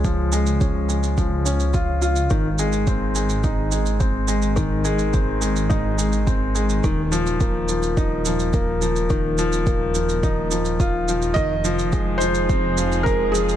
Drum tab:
SH |x-xxx-xxx-xxx-xx|x-xxx-xxx-xxx-xx|x-xxx-xxx-xxx-xx|x-xxx-xxx-xxx-xx|
BD |o---o---o---o---|o---o---o---o---|o---o---o---o---|o---o---o---o---|

SH |x-xxx-xxx-xxx-xx|x-xxx-xxx-xxx-xx|
BD |o---o---o---o---|o---o---o---o---|